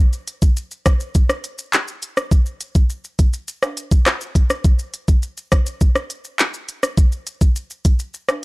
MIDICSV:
0, 0, Header, 1, 2, 480
1, 0, Start_track
1, 0, Tempo, 582524
1, 1907, Time_signature, 4, 2, 24, 8
1, 6958, End_track
2, 0, Start_track
2, 0, Title_t, "Drums"
2, 106, Note_on_c, 9, 82, 59
2, 107, Note_off_c, 9, 82, 0
2, 107, Note_on_c, 9, 82, 49
2, 189, Note_off_c, 9, 82, 0
2, 226, Note_on_c, 9, 42, 73
2, 226, Note_on_c, 9, 82, 54
2, 309, Note_off_c, 9, 42, 0
2, 309, Note_off_c, 9, 82, 0
2, 345, Note_on_c, 9, 82, 76
2, 346, Note_off_c, 9, 82, 0
2, 346, Note_on_c, 9, 82, 69
2, 347, Note_on_c, 9, 36, 104
2, 429, Note_off_c, 9, 36, 0
2, 429, Note_off_c, 9, 82, 0
2, 466, Note_on_c, 9, 82, 70
2, 468, Note_off_c, 9, 82, 0
2, 468, Note_on_c, 9, 82, 76
2, 550, Note_off_c, 9, 82, 0
2, 587, Note_on_c, 9, 82, 61
2, 670, Note_off_c, 9, 82, 0
2, 706, Note_on_c, 9, 37, 95
2, 706, Note_on_c, 9, 82, 47
2, 707, Note_off_c, 9, 82, 0
2, 707, Note_on_c, 9, 42, 86
2, 707, Note_on_c, 9, 82, 65
2, 708, Note_on_c, 9, 36, 102
2, 788, Note_off_c, 9, 37, 0
2, 790, Note_off_c, 9, 36, 0
2, 790, Note_off_c, 9, 42, 0
2, 790, Note_off_c, 9, 82, 0
2, 826, Note_on_c, 9, 82, 72
2, 908, Note_off_c, 9, 82, 0
2, 946, Note_on_c, 9, 82, 80
2, 948, Note_off_c, 9, 82, 0
2, 948, Note_on_c, 9, 36, 95
2, 948, Note_on_c, 9, 82, 74
2, 1030, Note_off_c, 9, 36, 0
2, 1030, Note_off_c, 9, 82, 0
2, 1067, Note_on_c, 9, 37, 92
2, 1067, Note_on_c, 9, 82, 52
2, 1149, Note_off_c, 9, 37, 0
2, 1150, Note_off_c, 9, 82, 0
2, 1186, Note_on_c, 9, 42, 66
2, 1186, Note_on_c, 9, 82, 45
2, 1187, Note_off_c, 9, 82, 0
2, 1187, Note_on_c, 9, 82, 62
2, 1269, Note_off_c, 9, 42, 0
2, 1270, Note_off_c, 9, 82, 0
2, 1305, Note_on_c, 9, 82, 72
2, 1388, Note_off_c, 9, 82, 0
2, 1425, Note_on_c, 9, 82, 79
2, 1426, Note_off_c, 9, 82, 0
2, 1426, Note_on_c, 9, 82, 74
2, 1428, Note_on_c, 9, 39, 97
2, 1508, Note_off_c, 9, 82, 0
2, 1511, Note_off_c, 9, 39, 0
2, 1547, Note_on_c, 9, 82, 57
2, 1548, Note_off_c, 9, 82, 0
2, 1548, Note_on_c, 9, 82, 50
2, 1630, Note_off_c, 9, 82, 0
2, 1666, Note_on_c, 9, 82, 60
2, 1669, Note_off_c, 9, 82, 0
2, 1669, Note_on_c, 9, 42, 71
2, 1669, Note_on_c, 9, 82, 51
2, 1752, Note_off_c, 9, 42, 0
2, 1752, Note_off_c, 9, 82, 0
2, 1787, Note_on_c, 9, 82, 74
2, 1789, Note_off_c, 9, 82, 0
2, 1789, Note_on_c, 9, 37, 86
2, 1789, Note_on_c, 9, 82, 77
2, 1871, Note_off_c, 9, 82, 0
2, 1872, Note_off_c, 9, 37, 0
2, 1907, Note_on_c, 9, 36, 125
2, 1908, Note_on_c, 9, 82, 85
2, 1989, Note_off_c, 9, 36, 0
2, 1991, Note_off_c, 9, 82, 0
2, 2027, Note_on_c, 9, 82, 58
2, 2109, Note_off_c, 9, 82, 0
2, 2147, Note_on_c, 9, 42, 74
2, 2147, Note_on_c, 9, 82, 59
2, 2229, Note_off_c, 9, 42, 0
2, 2229, Note_off_c, 9, 82, 0
2, 2266, Note_on_c, 9, 82, 74
2, 2267, Note_off_c, 9, 82, 0
2, 2267, Note_on_c, 9, 36, 105
2, 2267, Note_on_c, 9, 82, 70
2, 2350, Note_off_c, 9, 36, 0
2, 2350, Note_off_c, 9, 82, 0
2, 2386, Note_on_c, 9, 82, 72
2, 2388, Note_off_c, 9, 82, 0
2, 2388, Note_on_c, 9, 82, 75
2, 2471, Note_off_c, 9, 82, 0
2, 2508, Note_on_c, 9, 82, 64
2, 2591, Note_off_c, 9, 82, 0
2, 2627, Note_on_c, 9, 82, 49
2, 2628, Note_off_c, 9, 82, 0
2, 2628, Note_on_c, 9, 36, 105
2, 2628, Note_on_c, 9, 42, 88
2, 2628, Note_on_c, 9, 82, 65
2, 2710, Note_off_c, 9, 42, 0
2, 2710, Note_off_c, 9, 82, 0
2, 2711, Note_off_c, 9, 36, 0
2, 2746, Note_on_c, 9, 82, 74
2, 2747, Note_off_c, 9, 82, 0
2, 2747, Note_on_c, 9, 82, 75
2, 2829, Note_off_c, 9, 82, 0
2, 2866, Note_on_c, 9, 82, 80
2, 2868, Note_off_c, 9, 82, 0
2, 2868, Note_on_c, 9, 82, 77
2, 2950, Note_off_c, 9, 82, 0
2, 2987, Note_on_c, 9, 37, 87
2, 2987, Note_on_c, 9, 82, 45
2, 2988, Note_off_c, 9, 82, 0
2, 2988, Note_on_c, 9, 65, 71
2, 2988, Note_on_c, 9, 82, 52
2, 3070, Note_off_c, 9, 37, 0
2, 3070, Note_off_c, 9, 65, 0
2, 3070, Note_off_c, 9, 82, 0
2, 3107, Note_on_c, 9, 42, 68
2, 3107, Note_on_c, 9, 82, 61
2, 3189, Note_off_c, 9, 42, 0
2, 3190, Note_off_c, 9, 82, 0
2, 3225, Note_on_c, 9, 36, 102
2, 3225, Note_on_c, 9, 82, 76
2, 3226, Note_off_c, 9, 82, 0
2, 3226, Note_on_c, 9, 82, 69
2, 3308, Note_off_c, 9, 36, 0
2, 3308, Note_off_c, 9, 82, 0
2, 3345, Note_on_c, 9, 82, 81
2, 3346, Note_off_c, 9, 82, 0
2, 3346, Note_on_c, 9, 82, 69
2, 3348, Note_on_c, 9, 37, 100
2, 3348, Note_on_c, 9, 39, 100
2, 3429, Note_off_c, 9, 82, 0
2, 3431, Note_off_c, 9, 37, 0
2, 3431, Note_off_c, 9, 39, 0
2, 3468, Note_on_c, 9, 82, 56
2, 3550, Note_off_c, 9, 82, 0
2, 3586, Note_on_c, 9, 36, 95
2, 3586, Note_on_c, 9, 82, 58
2, 3590, Note_off_c, 9, 82, 0
2, 3590, Note_on_c, 9, 42, 70
2, 3590, Note_on_c, 9, 82, 53
2, 3668, Note_off_c, 9, 36, 0
2, 3672, Note_off_c, 9, 42, 0
2, 3672, Note_off_c, 9, 82, 0
2, 3707, Note_on_c, 9, 82, 75
2, 3709, Note_off_c, 9, 82, 0
2, 3709, Note_on_c, 9, 37, 88
2, 3709, Note_on_c, 9, 82, 79
2, 3791, Note_off_c, 9, 82, 0
2, 3792, Note_off_c, 9, 37, 0
2, 3827, Note_on_c, 9, 36, 122
2, 3828, Note_on_c, 9, 82, 72
2, 3910, Note_off_c, 9, 36, 0
2, 3910, Note_off_c, 9, 82, 0
2, 3946, Note_on_c, 9, 82, 51
2, 3947, Note_off_c, 9, 82, 0
2, 3947, Note_on_c, 9, 82, 59
2, 4030, Note_off_c, 9, 82, 0
2, 4066, Note_on_c, 9, 82, 58
2, 4067, Note_off_c, 9, 82, 0
2, 4067, Note_on_c, 9, 42, 70
2, 4067, Note_on_c, 9, 82, 52
2, 4150, Note_off_c, 9, 42, 0
2, 4150, Note_off_c, 9, 82, 0
2, 4186, Note_on_c, 9, 82, 72
2, 4187, Note_off_c, 9, 82, 0
2, 4187, Note_on_c, 9, 36, 99
2, 4187, Note_on_c, 9, 82, 73
2, 4269, Note_off_c, 9, 82, 0
2, 4270, Note_off_c, 9, 36, 0
2, 4306, Note_on_c, 9, 82, 71
2, 4309, Note_off_c, 9, 82, 0
2, 4309, Note_on_c, 9, 82, 75
2, 4391, Note_off_c, 9, 82, 0
2, 4427, Note_on_c, 9, 82, 54
2, 4428, Note_off_c, 9, 82, 0
2, 4428, Note_on_c, 9, 82, 65
2, 4510, Note_off_c, 9, 82, 0
2, 4547, Note_on_c, 9, 37, 98
2, 4547, Note_on_c, 9, 82, 48
2, 4548, Note_off_c, 9, 82, 0
2, 4548, Note_on_c, 9, 36, 99
2, 4548, Note_on_c, 9, 42, 88
2, 4548, Note_on_c, 9, 82, 67
2, 4629, Note_off_c, 9, 37, 0
2, 4630, Note_off_c, 9, 42, 0
2, 4630, Note_off_c, 9, 82, 0
2, 4631, Note_off_c, 9, 36, 0
2, 4666, Note_on_c, 9, 82, 74
2, 4667, Note_off_c, 9, 82, 0
2, 4667, Note_on_c, 9, 82, 73
2, 4749, Note_off_c, 9, 82, 0
2, 4786, Note_on_c, 9, 82, 78
2, 4788, Note_off_c, 9, 82, 0
2, 4788, Note_on_c, 9, 36, 98
2, 4788, Note_on_c, 9, 82, 77
2, 4870, Note_off_c, 9, 82, 0
2, 4871, Note_off_c, 9, 36, 0
2, 4906, Note_on_c, 9, 82, 46
2, 4907, Note_on_c, 9, 37, 89
2, 4908, Note_off_c, 9, 82, 0
2, 4908, Note_on_c, 9, 82, 53
2, 4989, Note_off_c, 9, 37, 0
2, 4990, Note_off_c, 9, 82, 0
2, 5026, Note_on_c, 9, 42, 64
2, 5026, Note_on_c, 9, 82, 46
2, 5028, Note_off_c, 9, 82, 0
2, 5028, Note_on_c, 9, 82, 62
2, 5109, Note_off_c, 9, 42, 0
2, 5110, Note_off_c, 9, 82, 0
2, 5145, Note_on_c, 9, 82, 76
2, 5146, Note_off_c, 9, 82, 0
2, 5146, Note_on_c, 9, 82, 68
2, 5229, Note_off_c, 9, 82, 0
2, 5265, Note_on_c, 9, 82, 81
2, 5267, Note_off_c, 9, 82, 0
2, 5267, Note_on_c, 9, 82, 73
2, 5268, Note_on_c, 9, 39, 100
2, 5349, Note_off_c, 9, 82, 0
2, 5350, Note_off_c, 9, 39, 0
2, 5387, Note_on_c, 9, 82, 58
2, 5388, Note_off_c, 9, 82, 0
2, 5388, Note_on_c, 9, 82, 54
2, 5471, Note_off_c, 9, 82, 0
2, 5507, Note_on_c, 9, 82, 56
2, 5509, Note_off_c, 9, 82, 0
2, 5509, Note_on_c, 9, 42, 72
2, 5509, Note_on_c, 9, 82, 50
2, 5591, Note_off_c, 9, 42, 0
2, 5591, Note_off_c, 9, 82, 0
2, 5628, Note_on_c, 9, 82, 77
2, 5629, Note_on_c, 9, 37, 87
2, 5711, Note_off_c, 9, 37, 0
2, 5711, Note_off_c, 9, 82, 0
2, 5747, Note_on_c, 9, 36, 126
2, 5747, Note_on_c, 9, 82, 73
2, 5749, Note_off_c, 9, 82, 0
2, 5749, Note_on_c, 9, 82, 84
2, 5830, Note_off_c, 9, 36, 0
2, 5832, Note_off_c, 9, 82, 0
2, 5867, Note_on_c, 9, 82, 58
2, 5868, Note_off_c, 9, 82, 0
2, 5868, Note_on_c, 9, 82, 49
2, 5950, Note_off_c, 9, 82, 0
2, 5988, Note_on_c, 9, 42, 72
2, 5988, Note_on_c, 9, 82, 60
2, 6070, Note_off_c, 9, 42, 0
2, 6070, Note_off_c, 9, 82, 0
2, 6106, Note_on_c, 9, 82, 74
2, 6107, Note_on_c, 9, 36, 102
2, 6108, Note_off_c, 9, 82, 0
2, 6108, Note_on_c, 9, 82, 72
2, 6190, Note_off_c, 9, 36, 0
2, 6190, Note_off_c, 9, 82, 0
2, 6227, Note_on_c, 9, 82, 72
2, 6228, Note_off_c, 9, 82, 0
2, 6228, Note_on_c, 9, 82, 76
2, 6311, Note_off_c, 9, 82, 0
2, 6348, Note_on_c, 9, 82, 51
2, 6431, Note_off_c, 9, 82, 0
2, 6467, Note_on_c, 9, 42, 91
2, 6467, Note_on_c, 9, 82, 65
2, 6468, Note_off_c, 9, 82, 0
2, 6468, Note_on_c, 9, 36, 101
2, 6468, Note_on_c, 9, 82, 50
2, 6550, Note_off_c, 9, 42, 0
2, 6550, Note_off_c, 9, 82, 0
2, 6551, Note_off_c, 9, 36, 0
2, 6587, Note_on_c, 9, 82, 74
2, 6669, Note_off_c, 9, 82, 0
2, 6707, Note_on_c, 9, 82, 84
2, 6708, Note_off_c, 9, 82, 0
2, 6708, Note_on_c, 9, 82, 74
2, 6791, Note_off_c, 9, 82, 0
2, 6827, Note_on_c, 9, 37, 94
2, 6827, Note_on_c, 9, 82, 43
2, 6828, Note_off_c, 9, 82, 0
2, 6828, Note_on_c, 9, 65, 72
2, 6828, Note_on_c, 9, 82, 52
2, 6910, Note_off_c, 9, 37, 0
2, 6910, Note_off_c, 9, 65, 0
2, 6910, Note_off_c, 9, 82, 0
2, 6958, End_track
0, 0, End_of_file